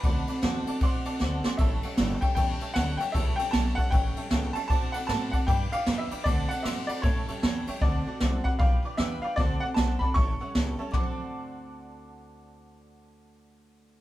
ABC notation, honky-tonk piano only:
X:1
M:4/4
L:1/8
Q:"Swing" 1/4=154
K:Dmix
V:1 name="Honky-tonk piano"
[dfa] [dfa] [dfa] [dfa] [dfc'] [dfa] [dfa] [dfc'] | [^cea] [cef] [cea] [cea] [cea] [cea] [cea] [cea] | [^cea] [cea] [cea] [cea] [cef] [cea] [cea] [cea] | [dfa] [dfb] [dfb] [dfa] [dgb] [dgd'] [dgb] [dgb] |
[dfa] [dfa] [dfc'] [dfb] [^cea] [cea] [cea] [ceg] | [dfa] [dfa] [dfa] [dfb] [dgb] [dgd'] [dgd'] [dgb] | [dfa] [dfa] [dfa] [dfa] [^cea] [cef] [cea] [cea] | [dfa]8- |
[dfa]8 |]